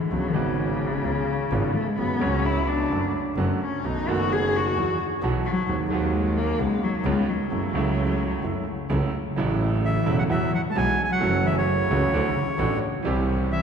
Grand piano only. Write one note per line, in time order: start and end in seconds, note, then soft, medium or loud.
0.11 0.31 C#2 medium
0.11 0.30 C#3 medium
0.11 0.31 G#3 soft
0.11 0.31 B3 soft
0.11 0.31 F#4 medium
0.32 1.00 G#1 medium
0.32 1.00 G#2 medium
0.32 0.99 C#3 medium
0.32 1.00 G#3 medium
0.32 1.00 B3 medium
0.36 1.01 F#4 medium
1.04 1.23 C#2 medium
1.04 1.24 C#3 medium
1.04 1.23 G#3 soft
1.04 1.24 B3 soft
1.04 1.24 F4 medium
1.51 1.71 G#1 medium
1.51 1.71 G#2 medium
1.51 1.71 C#3 medium
1.51 1.71 G#3 medium
1.51 1.71 B3 medium
1.51 1.71 F4 medium
1.98 2.18 F#2 medium
1.98 2.17 C#3 soft
1.98 2.18 F#3 medium
1.98 2.18 G#3 soft
1.98 2.18 F#4 medium
2.19 2.88 C#2 medium
2.19 2.87 C#3 medium
2.19 2.87 F#3 medium
2.19 2.88 G#3 medium
2.23 2.89 F#4 medium
2.91 3.11 F#2 medium
2.91 3.10 D3 soft
2.91 3.10 F#3 medium
2.91 3.10 A3 soft
2.91 3.10 C#4 soft
2.91 3.11 F#4 soft
3.37 3.57 F#2 medium
3.37 3.57 D3 medium
3.37 3.57 F#3 medium
3.37 3.57 A3 medium
3.37 3.57 C#4 medium
3.37 3.57 F#4 medium
3.84 4.04 B1 medium
3.84 4.04 B2 medium
3.84 4.03 D#3 soft
3.84 4.04 A3 soft
3.84 4.04 B3 soft
3.84 4.04 F#4 medium
4.06 4.74 F#1 medium
4.06 4.74 F#2 medium
4.06 4.73 D#3 medium
4.06 4.73 A3 medium
4.06 4.74 B3 medium
4.06 4.74 F#4 medium
4.77 4.96 E2 medium
4.77 4.96 E3 medium
4.77 4.96 F#3 soft
4.77 4.96 B3 soft
4.77 4.96 F#4 medium
5.23 5.42 B1 medium
5.23 5.42 B2 medium
5.23 5.42 E3 medium
5.23 5.42 F#3 medium
5.23 5.42 B3 medium
5.23 5.42 F#4 medium
5.68 5.87 D#2 medium
5.68 5.87 D#3 medium
5.68 5.87 G#3 soft
5.68 5.87 C4 soft
5.68 5.87 F#4 medium
5.90 6.56 D#2 medium
5.90 6.56 D#3 medium
5.90 6.56 G#3 medium
5.90 6.57 C4 medium
5.90 6.57 F#4 medium
6.60 6.79 C#2 medium
6.60 6.79 C#3 medium
6.60 6.79 G#3 soft
6.60 6.79 B3 soft
6.60 6.79 F#4 medium
7.06 7.25 C#2 medium
7.06 7.25 C#3 medium
7.06 7.25 G#3 medium
7.06 7.25 B3 medium
7.06 7.25 F4 medium
7.51 7.71 F#2 medium
7.51 7.70 C#3 soft
7.51 7.71 F#3 medium
7.51 7.71 A3 soft
7.51 7.71 E4 medium
7.73 8.40 C#2 medium
7.73 8.40 C#3 medium
7.73 8.40 F#3 medium
7.73 8.40 A3 medium
7.77 8.41 E4 medium
8.44 8.63 F#2 medium
8.44 8.63 C#3 soft
8.44 8.63 F#3 medium
8.44 8.63 A3 soft
8.44 8.63 E4 medium
8.90 9.09 C#2 medium
8.90 9.10 C#3 medium
8.90 9.10 F#3 medium
8.90 9.10 A3 medium
8.90 9.10 E4 medium
9.36 10.03 A1 medium
9.36 10.03 A2 medium
9.36 10.02 C#3 medium
9.36 10.03 F#3 medium
9.36 10.03 A3 medium
9.36 10.04 E4 medium
10.06 10.26 E1 medium
10.06 10.26 E2 medium
10.06 10.26 C#3 medium
10.06 10.26 F#3 medium
10.06 10.26 A3 medium
10.06 10.26 E4 medium
10.29 10.49 E2 medium
10.29 10.49 E3 medium
10.29 10.49 F#3 medium
10.29 10.49 B3 medium
10.29 10.49 F#4 medium
10.76 10.95 B1 medium
10.76 10.95 B2 medium
10.76 10.95 E3 medium
10.76 10.95 F#3 medium
10.76 10.95 B3 medium
10.76 10.95 F#4 medium
11.19 11.86 F#2 medium
11.19 11.85 E3 medium
11.19 11.86 F#3 loud
11.19 11.86 A3 medium
11.19 11.87 C#4 medium
11.23 11.88 F#4 medium
11.91 12.10 C#2 medium
11.91 12.10 C#3 medium
11.91 12.10 E3 medium
11.91 12.10 A3 medium
11.91 12.10 C#4 medium
11.91 12.10 F#4 medium
12.13 12.33 D2 medium
12.13 12.32 D3 medium
12.13 12.32 E3 medium
12.13 12.32 A3 medium
12.13 12.32 D4 medium
12.13 12.33 F#4 medium
12.59 12.78 A1 medium
12.59 12.78 A2 medium
12.59 12.78 E3 medium
12.59 12.78 A3 medium
12.59 12.78 D4 medium
12.59 12.78 F#4 medium
13.03 13.62 C2 medium
13.03 13.62 C3 medium
13.03 13.62 E3 medium
13.03 13.62 G3 medium
13.03 13.62 C4 medium
13.03 13.62 G4 medium